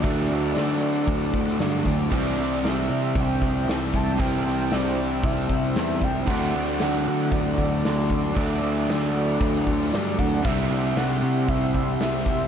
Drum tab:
CC |----------------|x---------------|----------------|x---------------|
HH |o---o---o---o---|----o---o---o---|o---o---o---o---|----o---o---o---|
SD |----o------oo---|----o-------o---|----o-------o---|----o-------o---|
BD |o-------o-o---o-|o-------o-o---o-|o-------o-o---o-|o-------o-o---o-|

CC |----------------|x---------------|
HH |o---o---o---o---|----o---o---o---|
SD |----o------oo---|----o-------o---|
BD |o-------o-o---o-|o-------o-o---o-|